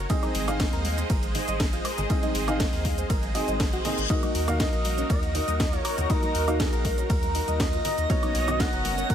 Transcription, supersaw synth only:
0.10 G#3 G#4 C5 D#5
4.10 D#4 F#4 A#4
8.10 C#4 F#4 C#5 D#5

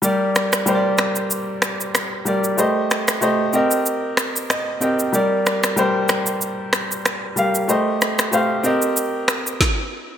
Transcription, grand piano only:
0.02 G3 G4 A#4 D5
0.66 G3 G4 A#4 C5
0.75 D5
2.25 G3 G4 A#4 D5
2.57 A3 G4 C5 D#5
3.21 A3 G4 C5 D#5
3.53 C4 G4 A#4 D#5
4.50 D#5
4.81 C4 G4 A#4 D#5 G5
5.12 G3 G4 A#4 D5
5.76 G3 G4 A#4 C5
7.36 G3 G4 A#4 F5
7.68 A3 G4 C5 D#5
8.32 A3 G4 C5 F5
8.63 C4 G4 A#4 D#5

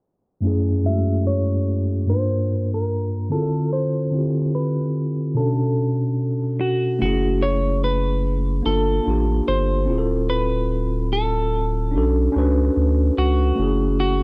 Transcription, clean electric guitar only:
0.86 E5
1.27 C#5
2.10 C5
2.74 A#4
3.32 A4
3.73 C5
4.55 B4
5.37 A4
6.61 F#4
7.02 F#4
7.43 C#5
7.84 B4
8.66 A4
9.48 C5
10.30 B4
11.13 A4
13.18 F#4
14.00 F#4

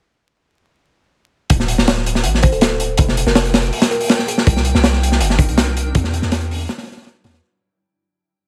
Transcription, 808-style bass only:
1.50 D1
1.78 D1
2.24 A1
2.52 D1
2.99 F1
3.26 F1
4.47 C2
4.75 C2
5.21 G1
5.49 C2
5.95 E2
6.23 E2
7.24 E2

